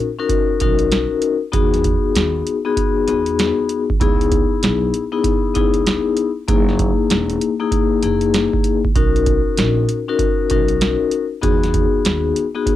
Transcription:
0.19 vibraphone C#4 D#4 F#4 A#4
0.29 kick, closed hi-hat
0.60 upright bass B1, vibraphone C#4 D#4 F#4 A#4, kick, closed hi-hat
0.79 closed hi-hat
0.92 snare, closed hi-hat
1.22 closed hi-hat
1.52 upright bass E2, vibraphone B3 D#4 F#4 G#4, kick, closed hi-hat
1.74 snare, closed hi-hat
1.84 kick, closed hi-hat
2.15 upright bass D#2, snare, closed hi-hat
2.46 closed hi-hat
2.65 vibraphone B3 D#4 F#4 G#4
2.77 kick, closed hi-hat
3.07 upright bass E2, vibraphone B3 D#4 F#4 G#4, closed hi-hat
3.26 closed hi-hat
3.39 snare, closed hi-hat
3.69 closed hi-hat
3.90 kick
4.00 upright bass C#2, vibraphone B3 D#4 E4 G#4, kick, closed hi-hat
4.21 closed hi-hat
4.32 kick, closed hi-hat
4.63 upright bass B1, snare, closed hi-hat
4.94 closed hi-hat
5.12 vibraphone B3 D#4 E4 G#4
5.24 kick, closed hi-hat
5.55 upright bass C#2, vibraphone B3 D#4 E4 G#4, kick, closed hi-hat
5.74 closed hi-hat
5.87 snare, closed hi-hat
6.17 closed hi-hat
6.48 upright bass F#1, vibraphone A#3 D#4 E4 G#4, kick, closed hi-hat
6.69 snare
6.79 kick, closed hi-hat
7.10 upright bass E1, snare, closed hi-hat
7.30 closed hi-hat
7.41 closed hi-hat
7.60 vibraphone A#3 D#4 E4 G#4
7.72 kick, closed hi-hat
8.02 upright bass F#1, vibraphone A#3 D#4 E4 G#4, closed hi-hat
8.21 closed hi-hat
8.34 snare, closed hi-hat
8.53 kick
8.64 closed hi-hat
8.85 kick
8.95 upright bass B1, vibraphone C#4 D#4 F#4 A#4, kick, closed hi-hat
9.16 closed hi-hat
9.26 kick, closed hi-hat
9.57 upright bass A#1, snare, closed hi-hat
9.89 closed hi-hat
10.08 vibraphone C#4 D#4 F#4 A#4
10.19 kick, closed hi-hat
10.50 upright bass B1, vibraphone C#4 D#4 F#4 A#4, kick, closed hi-hat
10.69 closed hi-hat
10.81 snare, closed hi-hat
11.11 closed hi-hat
11.41 upright bass E2, vibraphone B3 D#4 F#4 G#4, kick, closed hi-hat
11.63 snare, closed hi-hat
11.74 kick, closed hi-hat
12.05 upright bass D#2, snare, closed hi-hat
12.36 closed hi-hat
12.55 vibraphone B3 D#4 F#4 G#4
12.66 kick, closed hi-hat

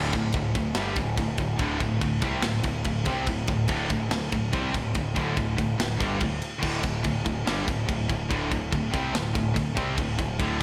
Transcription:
Already playing: picked electric bass D1, overdriven electric guitar D2 A2 D3
0.13 picked electric bass D1, overdriven electric guitar D2 A2, kick, ride
0.32 picked electric bass D1, overdriven electric guitar D2 A2, kick, ride
0.54 picked electric bass D1, overdriven electric guitar D2 A2, kick, ride
0.74 picked electric bass G1, overdriven electric guitar G2 D3 G3, snare, ride
0.94 picked electric bass D1, overdriven electric guitar D2 A2, kick, ride
1.17 picked electric bass D1, overdriven electric guitar D2 A2, kick, ride
1.36 picked electric bass D1, overdriven electric guitar D2 A2, kick, ride
1.40 distorted electric guitar D2
1.57 picked electric bass D1, overdriven electric guitar D2 A2 D3, kick, ride
1.62 distorted electric guitar D3
1.78 picked electric bass D1, overdriven electric guitar D2 A2, kick, ride
1.99 picked electric bass D1, overdriven electric guitar D2 A2, kick, ride
2.20 picked electric bass C2, overdriven electric guitar C3 G3 C4, kick, ride
2.41 picked electric bass D1, overdriven electric guitar D2 A2, snare, ride
2.63 picked electric bass D1, overdriven electric guitar D2 A2, kick, ride
2.83 picked electric bass D1, overdriven electric guitar D2 A2, kick, ride
3.04 picked electric bass C2, overdriven electric guitar C3 G3 C4, kick, ride
3.25 picked electric bass D1, overdriven electric guitar D2 A2, kick, ride
3.47 picked electric bass D1, overdriven electric guitar D2 A2, kick, ride
3.68 picked electric bass D1, overdriven electric guitar D2 A2 D3, kick, ride
3.89 picked electric bass D1, overdriven electric guitar D2 A2, kick, ride
4.09 picked electric bass D1, overdriven electric guitar D2 A2, snare, ride
4.32 picked electric bass D1, overdriven electric guitar D2 A2, kick, ride
4.52 picked electric bass C2, overdriven electric guitar C3 G3 C4, kick, ride
4.74 picked electric bass D1, overdriven electric guitar D2 A2, kick, ride
4.95 picked electric bass D1, overdriven electric guitar D2 A2, kick, ride
5.14 picked electric bass D1, overdriven electric guitar D2 A2 D3, kick, ride
5.36 picked electric bass D1, overdriven electric guitar D2 A2, kick, ride
5.57 picked electric bass D1, overdriven electric guitar D2 A2, kick, ride
5.77 picked electric bass D1, overdriven electric guitar D2 A2, snare, ride
6.00 picked electric bass G1, overdriven electric guitar G2 D3 G3, kick, ride
6.20 picked electric bass D1, overdriven electric guitar D2 A2, kick, ride
6.42 ride
6.61 picked electric bass D1, overdriven electric guitar D2 A2 D3, kick, crash
6.82 picked electric bass D1, overdriven electric guitar D2 A2, kick, ride
7.03 picked electric bass D1, overdriven electric guitar D2 A2, kick, ride
7.25 picked electric bass D1, overdriven electric guitar D2 A2, kick, ride
7.46 picked electric bass G1, overdriven electric guitar G2 D3 G3, snare, ride
7.67 picked electric bass D1, overdriven electric guitar D2 A2, kick, ride
7.88 picked electric bass D1, overdriven electric guitar D2 A2, kick, ride
8.08 picked electric bass D1, overdriven electric guitar D2 A2, kick, ride
8.30 picked electric bass D1, overdriven electric guitar D2 A2 D3, kick, ride
8.51 picked electric bass D1, overdriven electric guitar D2 A2, kick, ride
8.72 picked electric bass D1, overdriven electric guitar D2 A2, kick, ride
8.94 picked electric bass C2, overdriven electric guitar C3 G3 C4, kick, ride
9.14 picked electric bass D1, overdriven electric guitar D2 A2, snare, ride
9.35 picked electric bass D1, overdriven electric guitar D2 A2, kick, ride
9.54 picked electric bass D1, overdriven electric guitar D2 A2, kick, ride
9.75 picked electric bass C2, overdriven electric guitar C3 G3 C4, kick, ride
9.97 picked electric bass D1, overdriven electric guitar D2 A2, kick, ride
10.17 picked electric bass D1, overdriven electric guitar D2 A2, kick, ride
10.39 picked electric bass D1, overdriven electric guitar D2 A2 D3, kick, ride

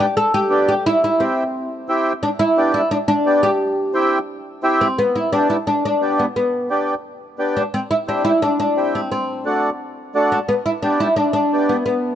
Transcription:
0.00 oud G4
0.17 oud A4
0.34 oud G4
0.50 accordion B3 D4 G4
0.69 oud G4
0.86 oud E4
1.04 oud E4
1.19 accordion C4 E4 G4, oud C4
1.89 accordion C4 E4 G4
2.23 oud D4
2.39 oud E4
2.57 accordion B3 D4 G4
2.74 oud E4
2.91 oud D4
3.08 oud D4
3.26 accordion B3 D4 G4
3.43 oud G4
3.94 accordion C4 E4 G4
4.63 accordion C4 E4 G4
4.81 oud C4
4.99 oud B3
5.15 oud E4
5.32 accordion B3 D4 G4, oud D4
5.50 oud E4
5.67 oud D4
5.85 oud D4
6.01 accordion B3 D4 G4
6.19 oud B3
6.36 oud B3
6.70 accordion B3 D4 G4
7.39 accordion B3 D4 G4
7.57 oud D4
7.74 oud C4
7.91 oud E4
8.07 accordion C4 E4 G4, oud D4
8.24 oud E4
8.42 oud D4
8.60 oud D4
8.76 accordion C4 E4 G4
8.95 oud C4
9.12 oud C4
9.45 accordion A3 D4 F#4
10.15 accordion A3 D4 F#4
10.32 oud D4
10.48 oud B3
10.66 oud E4
10.82 accordion B3 D4 G4, oud D4
11.00 oud E4
11.16 oud D4
11.33 oud D4
11.53 accordion B3 D4 G4
11.69 oud B3
11.86 oud B3

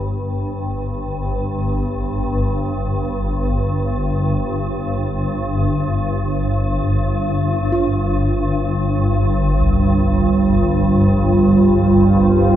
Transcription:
Already playing: synth drone G1 G2
7.72 kettle gongs F4
8.68 analog synth pad G3
9.48 analog synth pad F4
9.61 kettle gongs C2
11.34 analog synth pad G5
11.65 analog synth pad C5

